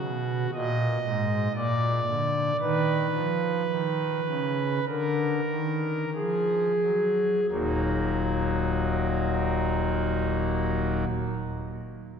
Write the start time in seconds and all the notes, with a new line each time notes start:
Already playing: F#4
0.01 B2
0.54 A#2 D#5
1.05 G#2
1.55 A#2 D5
2.07 D3
2.61 D#3 B4
3.15 F3
3.71 D#3
4.29 C#3
4.87 D3 A#4
5.51 D#3
6.14 F3 G#4
6.83 F#3
7.51 D#1 D#2 A#2 F#3 A#3 D#4 F#4